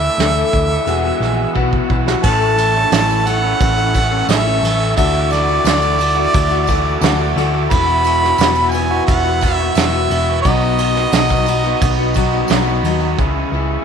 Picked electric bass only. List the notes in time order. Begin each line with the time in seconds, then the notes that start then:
0.18 D2
0.53 D2
0.87 E1
1.20 A#1
1.55 B1
1.90 B1
2.23 A1
2.92 A1
3.61 A1
4.29 A1
4.63 A1
4.98 D2
5.64 D2
6.35 D2
7.01 D2
7.36 D2
7.71 E1
8.39 E1
9.08 E1
9.76 E1
10.10 E1
10.45 B1
11.13 B1
11.81 B1
12.50 B1
12.83 D#2
13.18 C#2
13.52 C#2